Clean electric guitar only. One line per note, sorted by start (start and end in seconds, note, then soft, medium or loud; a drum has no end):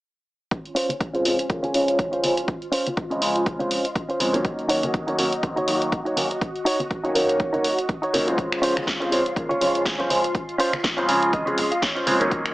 0.75 0.89 C#4 loud
0.75 0.90 F4 loud
0.75 0.90 C5 loud
1.00 muted clean electric guitar stroke soft
1.13 1.38 C#4 medium
1.13 1.39 F4 medium
1.13 1.39 C5 medium
1.63 1.88 C#4 loud
1.63 1.88 F4 medium
1.63 1.89 G#4 loud
2.12 2.23 C#4 medium
2.12 2.23 F4 medium
2.12 2.24 C5 medium
2.36 muted clean electric guitar stroke soft
2.72 2.86 C#4 loud
2.72 2.86 F4 loud
2.72 2.87 C5 loud
2.96 muted clean electric guitar stroke soft
3.10 3.35 C#4 medium
3.10 3.36 F4 medium
3.10 3.36 D#5 medium
3.59 3.84 C#4 loud
3.59 3.85 F4 loud
3.59 3.85 C5 loud
4.09 4.20 C#4 medium
4.09 4.20 F4 medium
4.09 4.21 C5 medium
4.33 muted clean electric guitar stroke soft
4.69 4.83 D#4 loud
4.69 4.83 F#4 loud
4.69 4.84 C#5 loud
5.07 5.32 D#4 medium
5.07 5.33 F#4 medium
5.07 5.33 C#5 medium
5.56 5.81 D#4 loud
5.56 5.82 F#4 loud
5.56 5.82 C#5 loud
6.05 6.16 D#4 medium
6.05 6.17 F#4 medium
6.05 6.17 C#5 medium
6.30 muted clean electric guitar stroke soft
6.65 6.79 D#4 loud
6.65 6.80 F#4 loud
6.65 6.80 C#5 loud
6.90 muted clean electric guitar stroke soft
7.03 7.29 D#4 medium
7.03 7.29 F#4 medium
7.03 7.30 C#5 medium
7.53 7.78 D#4 loud
7.53 7.78 F#4 loud
7.53 7.79 C#5 loud
8.02 8.13 D#4 medium
8.02 8.14 F#4 medium
8.02 8.14 C#5 medium
8.26 muted clean electric guitar stroke soft
8.62 8.76 C#4 loud
8.62 8.77 F4 medium
8.62 8.77 C5 loud
8.86 muted clean electric guitar stroke soft
9.00 9.25 C#4 medium
9.00 9.26 F4 medium
9.00 9.26 C5 medium
9.49 9.74 C#4 loud
9.49 9.75 F4 loud
9.49 9.75 C#5 loud
9.98 10.10 C#4 medium
9.98 10.10 F4 medium
9.98 10.11 C5 medium
10.23 muted clean electric guitar stroke soft
10.58 10.73 C#4 loud
10.58 10.73 F4 loud
10.58 10.74 C5 loud
10.83 muted clean electric guitar stroke soft
10.97 11.22 C#4 medium
10.97 11.22 F4 medium
10.97 11.08 C5 medium
11.08 11.31 G#5 medium
11.33 11.69 D#5 medium
11.46 11.71 C#4 loud
11.46 11.72 F4 medium
11.46 11.72 G#4 loud
11.71 11.82 F5 medium
11.82 12.28 C#5 medium
11.95 12.06 C#4 medium
11.95 12.07 F4 medium
11.95 12.07 C5 medium
12.20 muted clean electric guitar stroke soft